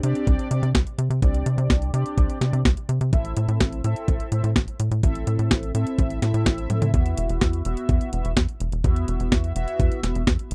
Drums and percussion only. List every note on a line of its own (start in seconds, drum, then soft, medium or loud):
0.03 closed hi-hat medium
0.15 closed hi-hat soft
0.27 kick loud
0.27 closed hi-hat medium
0.39 closed hi-hat soft
0.51 closed hi-hat medium
0.63 closed hi-hat soft
0.75 kick loud
0.75 snare loud
0.75 closed hi-hat medium
0.87 closed hi-hat soft
0.99 closed hi-hat medium
1.11 closed hi-hat soft
1.22 kick loud
1.22 closed hi-hat medium
1.34 closed hi-hat soft
1.46 closed hi-hat medium
1.58 closed hi-hat soft
1.70 kick loud
1.70 snare loud
1.70 closed hi-hat medium
1.82 closed hi-hat soft
1.94 closed hi-hat medium
2.06 closed hi-hat soft
2.18 kick loud
2.18 closed hi-hat medium
2.30 closed hi-hat soft
2.41 snare medium
2.41 closed hi-hat medium
2.53 closed hi-hat soft
2.65 kick loud
2.65 snare loud
2.65 closed hi-hat medium
2.77 closed hi-hat soft
2.89 closed hi-hat medium
3.01 closed hi-hat soft
3.13 kick loud
3.13 closed hi-hat medium
3.25 closed hi-hat soft
3.37 closed hi-hat medium
3.49 closed hi-hat soft
3.60 kick loud
3.60 snare loud
3.60 closed hi-hat medium
3.72 closed hi-hat soft
3.84 closed hi-hat medium
3.96 closed hi-hat soft
4.08 kick loud
4.08 closed hi-hat medium
4.20 closed hi-hat soft
4.32 closed hi-hat medium
4.44 closed hi-hat soft
4.56 kick loud
4.56 snare loud
4.56 closed hi-hat medium
4.68 closed hi-hat soft
4.80 closed hi-hat medium
4.92 closed hi-hat soft
5.03 kick loud
5.03 closed hi-hat medium
5.15 closed hi-hat soft
5.27 closed hi-hat medium
5.39 closed hi-hat soft
5.51 kick loud
5.51 snare loud
5.51 closed hi-hat medium
5.63 closed hi-hat soft
5.75 closed hi-hat medium
5.87 closed hi-hat soft
5.99 kick loud
5.99 closed hi-hat medium
6.10 closed hi-hat soft
6.22 snare medium
6.22 closed hi-hat medium
6.34 closed hi-hat soft
6.46 kick loud
6.46 snare loud
6.46 closed hi-hat medium
6.58 closed hi-hat soft
6.70 closed hi-hat medium
6.70 high tom medium
6.82 closed hi-hat soft
6.82 mid tom medium
6.94 kick loud
6.94 closed hi-hat medium
7.06 closed hi-hat soft
7.17 closed hi-hat medium
7.29 closed hi-hat soft
7.41 kick loud
7.41 snare loud
7.41 closed hi-hat medium
7.53 closed hi-hat soft
7.65 closed hi-hat loud
7.77 closed hi-hat soft
7.89 kick loud
7.89 closed hi-hat medium
8.01 closed hi-hat soft
8.13 closed hi-hat medium
8.25 closed hi-hat soft
8.37 kick loud
8.37 snare loud
8.37 closed hi-hat medium
8.49 closed hi-hat soft
8.60 closed hi-hat medium
8.72 closed hi-hat soft
8.84 kick loud
8.84 closed hi-hat medium
8.96 closed hi-hat soft
9.08 closed hi-hat medium
9.20 closed hi-hat soft
9.32 kick loud
9.32 snare loud
9.32 closed hi-hat medium
9.44 closed hi-hat soft
9.56 closed hi-hat medium
9.68 closed hi-hat soft
9.80 kick loud
9.80 closed hi-hat medium
9.92 closed hi-hat soft
10.03 snare medium
10.03 closed hi-hat medium
10.15 closed hi-hat soft
10.27 kick loud
10.27 snare loud
10.27 closed hi-hat medium
10.39 closed hi-hat soft
10.51 closed hi-hat medium